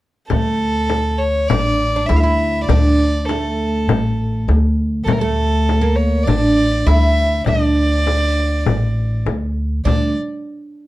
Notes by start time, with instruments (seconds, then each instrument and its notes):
0.29 upright bass D2, oud A3, violin A4, frame drum
0.90 frame drum
1.18 violin C#5
1.48 upright bass A1, oud D4, violin D5, frame drum
1.96 oud D4
2.06 upright bass D2, oud E4, violin E5, frame drum
2.16 violin E5 F5
2.23 oud E4
2.64 violin D5
2.69 upright bass D2, oud D4, frame drum
3.26 oud A3, violin A4, frame drum
3.87 upright bass A1, frame drum
4.48 upright bass D2, frame drum
5.04 upright bass D2, oud A3, violin A4
5.08 frame drum
5.13 violin A#4
5.18 oud A3, violin A4
5.69 frame drum
5.81 oud A#3
5.96 violin C#5
6.24 upright bass A1, oud D4, violin D5
6.28 frame drum
6.86 upright bass D2, oud E4, violin E5, frame drum
7.46 upright bass D2, oud D4, violin D5, frame drum
8.07 frame drum
8.66 upright bass A1, frame drum
9.26 upright bass D2, frame drum
9.85 upright bass D2, oud D4, violin D5, frame drum